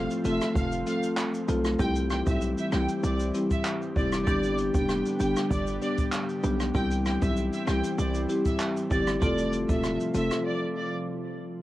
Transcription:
Already playing: F3 A3 C4 F4 A4
0.11 shaker
0.25 F1 A3 C4 F4 A4 E5, closed hi-hat, shaker
0.41 cross-stick, shaker
0.56 F1 F5, kick, shaker
0.72 shaker
0.87 A3 C4 F4 A4 F5, closed hi-hat, shaker
1.03 shaker
1.18 cross-stick, clap, shaker
1.34 shaker
1.48 B1 A3 C4 F4 A4, closed hi-hat, high timbale, shaker
1.65 cross-stick, shaker
1.79 C2 E3 G3 C4 E4 G4 G5, kick, shaker
1.96 shaker
2.11 G5, cross-stick, closed hi-hat, shaker
2.27 B1 G3 C4 E4 G4 E5, kick, shaker
2.42 shaker
2.58 E5, shaker
2.72 C2 G3 C4 E4 G4 G5, cross-stick, closed hi-hat, shaker
2.89 shaker
3.03 C2 D5, shaker
3.19 shaker
3.34 G3 C4 E4 G4, closed hi-hat, shaker
3.51 E5, kick, shaker
3.65 clap, shaker
3.82 shaker
3.96 F1 G3 C4 E4 G4 D5, kick, closed hi-hat, shaker
4.12 cross-stick, shaker
4.27 G1 D3 G3 B3 D4 G4 D5, kick, shaker
4.43 shaker
4.58 closed hi-hat, shaker
4.74 F1 G3 B3 D4 G4 G5, kick, shaker
4.89 cross-stick, shaker
5.05 shaker
5.19 G1 G3 B3 D4 G4 G5, closed hi-hat, shaker
5.36 cross-stick, shaker
5.50 G1 D5, kick, shaker
5.67 shaker
5.82 G3 B3 D4 G4 D5, closed hi-hat, shaker
5.98 kick, shaker
6.12 cross-stick, clap, shaker
6.29 shaker
6.43 B1 G3 B3 D4 G4, closed hi-hat, high timbale, shaker
6.60 cross-stick, shaker
6.74 C2 E3 G3 C4 E4 G4 G5, kick, shaker
6.91 shaker
7.05 G5, cross-stick, closed hi-hat, shaker
7.22 B1 G3 C4 E4 G4 E5, kick, shaker
7.36 shaker
7.53 E5, shaker
7.67 C2 G3 C4 E4 G4 G5, cross-stick, closed hi-hat, shaker
7.84 shaker
7.98 C2 D5, shaker
8.14 shaker
8.29 G3 C4 E4 G4, closed hi-hat, shaker
8.46 E5, kick, shaker
8.60 clap, shaker
8.77 shaker
8.91 G1 G3 C4 E4 G4 D5, kick, closed hi-hat, shaker
9.07 cross-stick, shaker
9.22 F1 C3 F3 A3 C4 F4 A4 D5, kick, shaker
9.38 shaker
9.53 closed hi-hat, shaker
9.69 E1 A3 C4 F4 A4 E5, kick, shaker
9.84 cross-stick, shaker
10.00 shaker
10.14 F1 A3 C4 F4 A4 E5, closed hi-hat, shaker
10.31 cross-stick, shaker
10.46 D5
10.77 D5

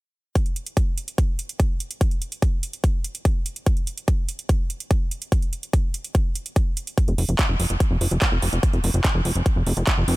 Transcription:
0.35 kick, closed hi-hat
0.46 closed hi-hat
0.56 closed hi-hat
0.66 closed hi-hat
0.77 kick, closed hi-hat
0.98 closed hi-hat
1.08 closed hi-hat
1.18 kick, closed hi-hat
1.39 closed hi-hat
1.49 closed hi-hat
1.60 kick, closed hi-hat
1.80 closed hi-hat
1.91 closed hi-hat
2.01 kick, closed hi-hat
2.11 closed hi-hat
2.22 closed hi-hat
2.32 closed hi-hat
2.42 kick, closed hi-hat
2.63 closed hi-hat
2.73 closed hi-hat
2.84 kick, closed hi-hat
3.04 closed hi-hat
3.15 closed hi-hat
3.25 kick, closed hi-hat
3.46 closed hi-hat
3.56 closed hi-hat
3.66 kick, closed hi-hat
3.77 closed hi-hat
3.87 closed hi-hat
3.98 closed hi-hat
4.08 kick, closed hi-hat
4.29 closed hi-hat
4.39 closed hi-hat
4.49 kick, closed hi-hat
4.70 closed hi-hat
4.80 closed hi-hat
4.91 kick, closed hi-hat
5.11 closed hi-hat
5.22 closed hi-hat
5.32 kick, closed hi-hat
5.42 closed hi-hat
5.53 closed hi-hat
5.63 closed hi-hat
5.73 kick, closed hi-hat
5.94 closed hi-hat
6.04 closed hi-hat
6.15 kick, closed hi-hat
6.35 closed hi-hat
6.46 closed hi-hat
6.56 kick, closed hi-hat
6.77 closed hi-hat
6.87 closed hi-hat
6.98 kick, closed hi-hat
7.08 F1, closed hi-hat
7.18 F1, open hi-hat
7.29 F1, closed hi-hat
7.39 kick, clap, closed hi-hat
7.49 F1
7.60 F1, open hi-hat
7.70 F1, closed hi-hat
7.80 kick, closed hi-hat
7.91 F1
8.01 F1, open hi-hat
8.11 F1, closed hi-hat
8.22 kick, clap, closed hi-hat
8.32 F1
8.42 F1, open hi-hat
8.53 F1, closed hi-hat
8.63 kick, closed hi-hat
8.73 F1, closed hi-hat
8.84 F1, open hi-hat
8.94 F1, closed hi-hat
9.04 kick, clap, closed hi-hat
9.15 F1
9.25 F1, open hi-hat
9.36 F1, closed hi-hat
9.46 kick, closed hi-hat
9.56 F1
9.67 F1, open hi-hat
9.77 F1, closed hi-hat
9.87 kick, clap, closed hi-hat
9.98 F1
10.08 F1, open hi-hat

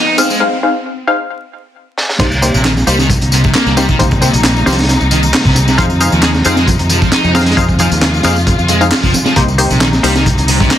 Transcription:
Already playing: C3 F3 G#3 D#4, riser
0.18 C4 D#4 G#4 C5 F5, closed hi-hat, tambourine
0.30 G#3, tambourine
0.40 D#4 G#4 C5 F5
0.63 D#4 G#4 C5 F5
1.07 D#4 G#4 C5 F5
1.98 snare
2.09 snare
2.19 C2 C3 G3 A#3 D#4 G4 C5, kick, closed hi-hat, crash, tambourine
2.32 tambourine
2.42 A#3 D#4 G4 C5, closed hi-hat, tambourine
2.54 A#1 C3, tambourine
2.65 D#3, snare, clap, closed hi-hat, tambourine
2.77 snare, tambourine
2.87 C2 G3 A#3 D#4 G4 C5, closed hi-hat, tambourine
2.99 D#3, snare, tambourine
3.10 kick, closed hi-hat, tambourine
3.21 C2, closed hi-hat, tambourine
3.32 C3, closed hi-hat, tambourine
3.43 C3, kick, tambourine
3.54 A#3, snare, clap, closed hi-hat, tambourine
3.66 C2, snare, tambourine
3.76 G3 A#3 D#4 G4 C5, snare, closed hi-hat, tambourine
3.88 D#3, kick, tambourine
3.99 C2 A#3 D#4 G4 C5, kick, closed hi-hat, tambourine
4.11 kick, tambourine
4.21 C3 A#3 D#4 G4 C5, closed hi-hat, tambourine
4.33 A#1, closed hi-hat, tambourine
4.44 snare, clap, closed hi-hat, tambourine
4.56 tambourine
4.66 C2 F3 A#3 D#4 G4 C5, snare, closed hi-hat, tambourine
4.72 snare, closed hi-hat
4.78 snare, closed hi-hat, tambourine
4.83 snare, closed hi-hat
4.89 snare, closed hi-hat, tambourine
5.01 C2, tambourine
5.11 D#3, closed hi-hat, tambourine
5.23 tambourine
5.34 snare, clap, open hi-hat, tambourine
5.45 C2 C3, kick, tambourine
5.55 snare, closed hi-hat, tambourine
5.68 C3, snare, tambourine
5.78 F2 F3 G#3 D#4 G#4 C5 F5, kick, closed hi-hat, tambourine
5.90 tambourine
6.00 D#4 G#4 C5 F5, closed hi-hat, tambourine
6.12 D#2 F3, tambourine
6.23 G#3, snare, clap, closed hi-hat, tambourine
6.34 snare, tambourine
6.45 F2 C4 D#4 G#4 C5 F5, closed hi-hat, tambourine
6.56 G#3, snare, tambourine
6.67 kick, closed hi-hat, tambourine
6.79 F2, closed hi-hat, tambourine
6.89 F3, closed hi-hat, tambourine
7.02 F3, kick, tambourine
7.12 D#4, snare, clap, closed hi-hat, tambourine
7.24 F2, snare, tambourine
7.35 C4 D#4 G#4 C5 F5, snare, closed hi-hat, tambourine
7.41 snare, closed hi-hat
7.45 G#3, snare, closed hi-hat, tambourine
7.51 snare, closed hi-hat
7.57 F2 D#4 F4 G#4 C5 F5, kick, closed hi-hat, tambourine
7.69 kick, tambourine
7.79 F3 D#4 G#4 C5 F5, closed hi-hat, tambourine
7.91 D#2, closed hi-hat, tambourine
8.02 snare, clap, closed hi-hat, tambourine
8.14 tambourine
8.23 F2 A#3 D#4 G#4 C5 F5, snare, closed hi-hat, tambourine
8.36 tambourine
8.47 kick, closed hi-hat, tambourine
8.58 F2, tambourine
8.68 G#3, closed hi-hat, tambourine
8.81 D#4 G#4 C5 F5, tambourine
8.91 snare, clap, open hi-hat, tambourine
9.03 F1 F3, kick, tambourine
9.14 snare, closed hi-hat, tambourine
9.25 F3, snare, tambourine
9.36 C2 C3 G3 A#3 D#4 G4 C5, kick, closed hi-hat, tambourine
9.48 tambourine
9.58 A#3 D#4 G4 C5, closed hi-hat, open hi-hat, tambourine
9.70 A#1 C3, tambourine
9.80 D#3, snare, clap, closed hi-hat, tambourine
9.93 snare, tambourine
10.03 C2 G3 A#3 D#4 G4 C5, closed hi-hat, open hi-hat, tambourine
10.15 D#3, snare, tambourine
10.26 kick, closed hi-hat, tambourine
10.37 C2, closed hi-hat, tambourine
10.48 C3, closed hi-hat, open hi-hat, tambourine
10.60 C3, kick, tambourine
10.71 A#3, snare, clap, closed hi-hat, tambourine

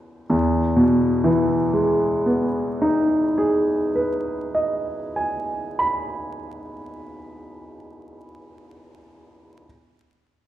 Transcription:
Already playing: E2 G#3 B3 C#4 F#4 G#5 B5 C#6 F#6
0.30 E2
0.76 B2
1.24 E3
1.73 G#3
2.26 B3
2.82 D#4
3.38 G#4
3.95 B4
4.55 D#5
5.16 G#5
5.79 B5

